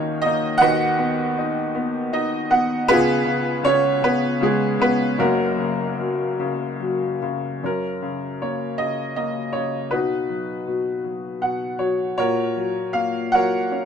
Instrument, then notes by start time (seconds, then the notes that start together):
upright piano
Already playing: D#2 D#3 A#3 C#4 D#4 F4 F#4 A#4 C#5 D#5 F5
0.22 A#3 D#5
0.26 D#4
0.58 D#2 D#3 B4 F#5
0.62 F#4 D#5
0.99 B3
1.38 D#4
1.75 B3
2.13 D#4 D#5
2.50 B3 F#5
2.88 C#2 C#3 B3 F4 G#4 B4
3.25 C#3
3.63 C#3 C#4 C#5
4.02 C#3 B3 B4
4.40 C#3 G#3 G#4
4.79 C#3 B3 B4
5.18 F#1 F#2 A#3 C#4 F#4 A#4
5.58 C#3
5.99 F#3
6.40 C#3
6.80 F#3
7.22 C#3
7.63 F#2 C#4 A#4
8.02 C#3
8.42 A#3 C#5
8.78 C#3 D#5
9.16 A#3 D#5
9.53 C#3 C#5
9.91 B2 D#4 F#4 B4
10.29 F#3
10.67 B2
11.04 F#3
11.41 B2 F#5
11.79 F#3 C#5
12.18 A#2 F#4 A#4 C#5
12.56 F#3
12.93 A#3 F5
13.32 F#3 A#4 C#5 F#5
13.72 C#4